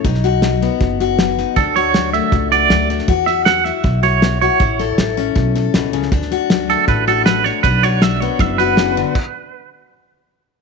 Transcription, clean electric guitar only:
X:1
M:4/4
L:1/8
Q:1/4=158
K:Bdor
V:1 name="Clean electric guitar"
z8 | A c2 e2 d2 z | z e f e2 c2 c- | c4- c z3 |
z3 A B A B c | B c e c e B3- | B3 z4 z |]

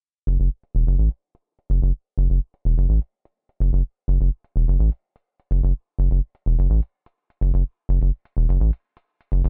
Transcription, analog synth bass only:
X:1
M:4/4
L:1/16
Q:1/4=126
K:F#m
V:1 name="Analog synth bass" clef=bass
z2 F,,, F,,, z2 E,,, F,,, A,,, z4 z F,,, F,,, | z2 F,,, F,,, z2 E,,, F,,, A,,, z4 z F,,, F,,, | z2 F,,, F,,, z2 E,,, F,,, A,,, z4 z F,,, F,,, | z2 F,,, F,,, z2 E,,, F,,, A,,, z4 z F,,, F,,, |
z2 F,,, F,,, z2 E,,, F,,, A,,, z4 z F,,, F,,, |]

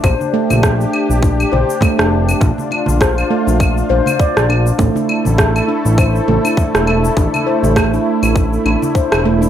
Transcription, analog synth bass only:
X:1
M:4/4
L:1/16
Q:"Swing 16ths" 1/4=101
K:Bblyd
V:1 name="Analog synth bass" clef=bass
B,,, z2 B,,,2 z2 B,,,2 z B,,, z2 F,,,2 z | B,,, z2 B,,,2 z2 B,,,2 z B,,, z2 B,,,2 z | A,,, z2 A,,,2 z2 A,,,2 z A,,, z2 E,,,2 z | A,,, z2 A,,,2 z2 A,,,2 z A,,, z2 E,,,2 z |]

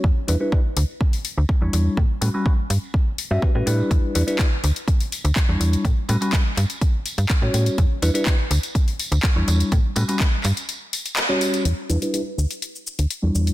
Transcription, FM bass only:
X:1
M:4/4
L:1/16
Q:1/4=124
K:Edor
V:1 name="FM bass" clef=bass
E,, z E,, z3 D,, z4 D,, z E,, E,, z | A,, z A,, z3 G,, z4 G,, z A,, A,, z | E,, z E,, z3 D,, z4 D,, z E,, E,, z | A,, z A,, z3 G,, z4 G,, z A,, A,, z |
E,, z E,, z3 D,, z4 D,, z E,, E,, z | A,, z A,, z3 G,, z8 z | E,, z E,, z3 D,, z4 D,, z E,, E,, z |]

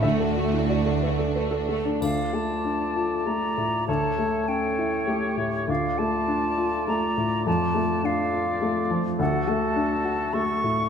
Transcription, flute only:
X:1
M:3/4
L:1/8
Q:1/4=100
K:D
V:1 name="Flute"
z6 | [K:Dm] f a3 b2 | a2 g3 z | f a3 b2 |
a2 f3 z | [K:D] f a3 c'2 |]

